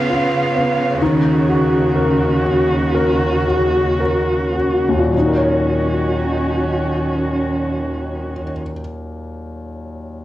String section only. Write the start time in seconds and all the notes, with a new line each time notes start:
Already playing: C#3 B3 F5
1.01 D#2 F#4
5.13 D#3 C#4 F#4